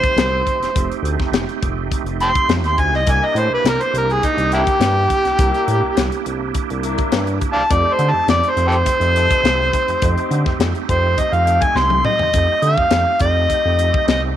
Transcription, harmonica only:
Already playing: C5
2.22 G5 A5 C6
2.67 C6
2.80 G#5
2.96 D#5
3.10 G#5
3.25 D#5
3.38 C5
3.54 B4
3.68 A#4
3.83 C5
3.97 A#4
4.13 G#4
4.26 D#4
4.53 D4 E4 G4
7.53 D5 F5 A5
7.73 D5
7.93 C5
8.11 A5
8.29 D5
8.50 C5
8.68 G4 A4 C5
10.90 C5
11.19 D#5
11.34 F5
11.63 G#5
11.77 C6
12.05 D#5
12.63 F5
13.21 D#5
14.08 D#5

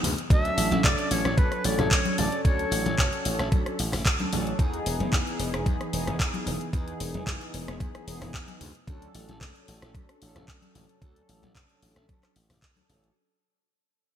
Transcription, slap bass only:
0.03 D2
0.30 D2
0.57 A1
0.71 A1
0.84 D2
1.11 A1
1.25 A1
1.38 D2
1.65 A1
1.79 A1
1.91 D2
2.18 A1
2.45 D2
2.71 A1
2.86 A1
2.98 D2
3.25 A1
3.39 A1
3.52 D2
3.67 muted slap bass stroke
3.79 A1
3.93 A1
4.33 A1
4.59 E2
4.86 E1
5.00 E1
5.13 E2
5.39 E1
5.54 E1
5.66 E2
5.93 E1
6.07 E1
6.47 E1
6.73 E2
7.00 E1
7.14 E1
7.27 E2
7.54 E1
7.68 E1
7.80 E2
8.07 E1
8.21 E1
8.61 D2
8.88 D2
9.15 A1
9.29 A1
9.41 D2
9.68 A1
9.82 A1
9.95 D2
10.22 A1
10.36 A1
10.75 A1
11.02 D2
11.29 A1
11.43 A1
11.82 A1
11.96 A1
12.36 A1
12.50 A1
12.90 A1

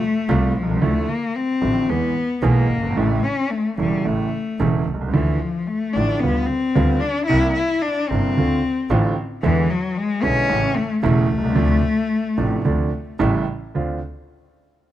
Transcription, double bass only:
0.29 C2
0.56 C2
0.82 D2
1.62 A1
1.89 E2
2.42 B1
2.69 G1
2.96 A1
3.78 E1
4.06 A1
4.60 E1
4.87 C2
5.14 D2
5.96 A1
6.23 D2
6.76 D2
7.30 C2
8.11 G1
8.37 D2
8.90 A1
9.44 E2
10.24 B1
10.51 A1
11.04 E1
11.31 C2
11.58 D2
12.38 A1
12.65 D2
13.20 A1
13.74 D2

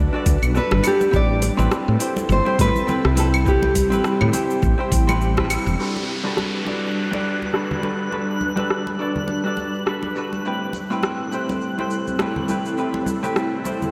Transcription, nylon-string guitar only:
Already playing: D5
0.57 B4
0.87 G4
1.16 D5
2.32 C5
2.61 B4
3.19 A4
3.48 G4

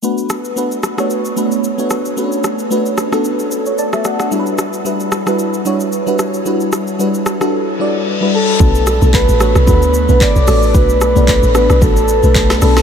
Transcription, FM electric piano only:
0.02 A3 B3 D4 F#4 B4
0.56 A3 B3 D4 F#4 B4
0.98 A3 B3 D4 F#4 C#5
1.36 A3 B3 D4 F#4 B4
1.78 A3 B3 D4 F#4 C#5
2.17 A3 B3 C#4 F#4 B4
2.24 D4
2.70 A3 B3 D4 F#4 B4
3.12 A3 B3 D4 F#4 A4
3.52 B4
3.66 C#5
3.78 D5 A5
3.93 E5
4.05 D5 F#5
4.20 F#5
4.31 G3 D4 E4 F#4 A4
4.39 B4
4.85 G3 D4 E4 F#4 B4
5.26 G3 D4 E4 F#4 B4
5.65 G3 D4 E4 F#4 C#5
6.06 G3 D4 E4 F#4 B4
6.45 G3 D4 E4 F#4 B4
6.99 G3 D4 E4 F#4 B4
7.40 G3 D4 E4 F#4 A4
7.79 G3 D4 E4 F#4 D5
8.21 G3 D4 E4 F#4 B4
8.60 A3 B3 D4 F#4 B4
9.01 A3 B3 D4 F#4 A4
9.40 A3 B3 D4 F#4 C#5
9.67 A3 B3 D4 F#4 B4
10.08 A3 B3 D4 F#4 B4
10.47 A3 B3 D4 F#4 A4
10.74 A3 B3 D4 F#4 D5
11.15 A3 B3 D4 F#4 D5
11.54 A3 B3 D4 F#4 B4
11.81 A3 B3 D4 F#4 B4
12.23 A3 B3 D4 F#4 B4
12.61 A3 B3 D4 F#4 B4

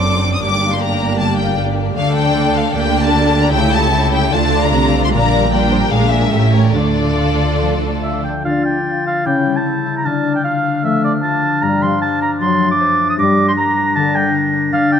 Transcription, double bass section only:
Already playing: F#1
0.42 G1
1.97 D2
2.76 D2
3.54 C#2
4.34 D2
4.73 C2
5.12 A#1
5.91 A#1
6.33 A1
6.74 D2

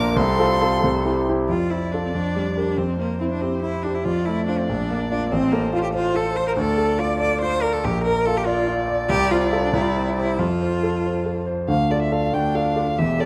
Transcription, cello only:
Already playing: A#4
0.17 A4
1.49 F4
1.70 E4
1.92 D4
2.04 C4
2.13 D4
2.56 D4
2.78 C4
2.99 A#3
3.20 C4
3.31 D4
3.41 C4
3.62 E4
3.83 D4
3.94 E4
4.04 F4
4.26 E4
4.47 D4
4.58 C4
4.68 D4
5.11 D4
5.30 C4
5.52 A#3
5.74 F4
5.83 G4
5.94 F4
6.16 A4
6.36 C5
6.48 A#4
6.58 A4
7.00 D5
7.20 D5
7.42 C5
7.62 A#4
7.73 A4
7.84 G4
8.04 A#4
8.26 A4
8.37 G4
8.46 F4
9.10 G4
9.32 F4
9.52 E4
9.64 D4
9.73 E4
9.81 F4
9.88 E4
10.17 E4
10.39 F4
12.34 D4
12.98 G4

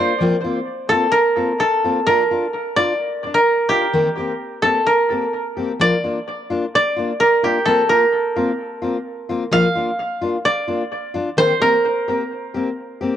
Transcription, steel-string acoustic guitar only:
Already playing: F4
0.00 A#3 D4
0.20 F3 A#3 C4 F4
0.44 A#3 C4 F4
0.91 A#3 C4 F4
1.37 A#3 C4 F4
1.84 A#3 C4 F4
2.07 A#3 D4 F4
2.31 D4 F4
2.78 D4 F4
3.24 D4, muted steel-string acoustic guitar stroke
3.71 D4 F4
3.93 D#3 A#3 C4 G4
4.18 A#3 C4 G4
4.64 A#3 C4 G4
5.11 A#3 C4 G4
5.57 A#3 C4 G4
5.80 F3 A#3 D4 F4
6.04 A#3 D4 F4
6.50 A#3 D4 F4
6.96 A#3 D4 F4
7.43 A#3 D4 F4
7.67 A#3 C4 F4, muted steel-string acoustic guitar stroke
7.89 A#3 F4, muted steel-string acoustic guitar stroke
8.36 A#3 C4 F4
8.82 A#3 C4 F4
9.29 A#3 C4 F4
9.52 F3 A#3 D4 F4
9.75 A#3 D4 F4
10.21 A#3 D4 F4
10.68 A#3 D4 F4
11.14 D4 F4, muted steel-string acoustic guitar stroke
11.37 D#3 A#3 C4 G4
11.60 A#3 C4 G4
12.08 A#3 C4 G4
12.54 A#3 C4 G4
13.01 A#3 C4 G4

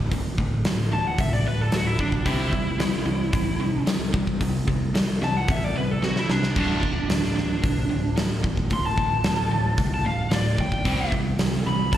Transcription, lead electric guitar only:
Already playing: D6
0.93 A5
1.08 F#5
1.20 E5
1.33 D5
1.48 B4
1.61 A4
1.76 F#4
1.87 E4
2.00 D4
2.27 E4
5.24 A5
5.37 F#5
5.51 E5
5.64 D5
5.77 B4
5.91 A4
6.04 F#4
6.19 E4
6.31 D4
6.59 D4
8.73 C6
8.86 A5
9.94 A5
10.06 F5
10.34 D5
10.60 G5
11.67 B5
11.94 A5

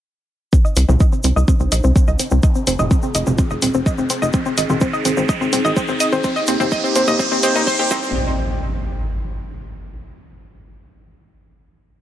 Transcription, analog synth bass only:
0.77 C2
0.89 C2
1.24 C2
1.36 C2
1.60 C2
1.72 A#1
1.84 C2
2.08 C2
2.31 C2
2.67 F1
2.79 F1
3.15 F1
3.27 F1
3.51 F1
3.63 D#1
3.75 F1
3.98 F1
4.22 F1
4.58 G#1
4.70 G#1
5.05 G#1
5.17 G#1
5.41 G#1
5.53 D#1
5.65 G#1
5.89 G#1
6.12 G#1
6.48 D#2
6.60 D#2
6.96 D#2
7.08 D#2
7.31 D#2
7.43 D#1
7.55 D#2
7.79 D#2
7.91 C2

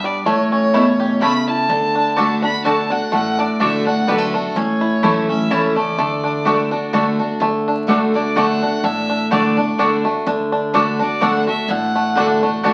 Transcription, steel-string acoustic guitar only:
Already playing: G2
0.26 A2
0.74 B2
1.21 C#3
1.69 D3
2.17 D3 A3 D4 F#4
2.43 D4 F#4
2.64 D3 A3 D4 F#4
2.91 D4 F#4
3.13 A2
3.60 D3 A3 D4 F#4
3.86 D4 F#4
4.08 D3 A3 D4 F#4
4.34 D4 F#4
4.56 A2
5.03 E3 A3 C#4 E4
5.29 C#4 E4
5.51 E3 A3 C#4 E4
5.76 C#4 E4
5.98 D3
6.45 D3 A3 D4 F#4
6.71 D4 F#4
6.93 D3 A3 D4 F#4
7.19 D4 F#4
7.40 D3
7.87 D3 A3 D4 F#4
8.14 D4 F#4
8.36 D3 A3 D4 F#4
8.61 D4 F#4
8.84 A2
9.31 D3 A3 D4 F#4
9.57 D4 F#4
9.79 D3 A3 D4 F#4
10.04 D4 F#4
10.26 D3
10.73 D3 A3 D4 F#4
11.00 D4 F#4
11.21 D3 A3 D4 F#4
11.46 D4 F#4
11.68 A2
12.15 D3 A3 D4 F#4
12.42 D4 F#4
12.64 D3 A3 D4 F#4

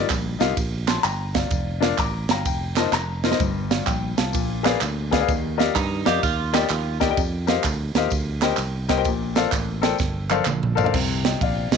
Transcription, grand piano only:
Already playing: G2
0.39 D#4 F4 G4 A#4 F5
0.88 A5 C6
1.03 G5 A#5
1.34 D5 F5
1.80 D4 F4 A#4 D5 F5
1.99 A#5 D6
2.31 F5 G5 A#5
2.47 G5
2.77 D#4 F4 A#4 C5 D#5 A5
2.93 A#5
3.23 D#4 F4 A#4 C5 D#5
3.30 D#4 F4 A#4 C5 D#5
3.40 G2
3.70 D5 F5
3.86 G5
4.17 F5 A5
4.33 A#2
4.63 G#4 A#4 B4 D5 F5
5.11 G#4 A#4 B4 D5 F5
5.19 G#4 A#4 B4 D5 F5
5.28 D#3
5.58 G4 A#4 D5 D#5 F5
6.05 G4 A#4 D5 D#5 F5
6.53 G4 A#4 D5 D#5 G5
7.00 G4 A#4 D5 D#5 G5
7.09 G4 A#4 D5 D#5 G5
7.47 G4 A#4 C5 D#5 F5
7.95 G4 A#4 C5 D#5 F5
8.42 G4 A#4 C5 D#5 G5
8.88 G4 A#4 C5 D#5 G5
8.97 G4 A#4 C5 D#5 G5
9.06 A#2
9.36 A4 A#4 C5 D5 F5
9.82 A4 A#4 C5 D5 G5
10.30 A4 A#4 C5 D5 F5
10.75 A4 A#4 C5 D5 F5
10.84 A4 A#4 C5 D5 F5
10.93 C3
11.25 D#5 G5
11.42 D5 F5
11.73 C5 D#5

